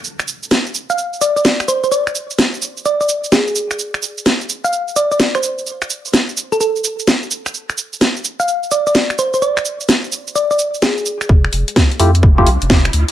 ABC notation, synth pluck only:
X:1
M:4/4
L:1/16
Q:"Swing 16ths" 1/4=128
K:Cmix
V:1 name="Synth pluck"
z6 z f2 z d d z2 c c | d2 z6 d d z2 _A3 z | z6 z f2 z d d z c z2 | z6 z A A z6 z |
z6 z f2 z d d z2 c c | d2 z6 d d z2 _A3 z | z16 |]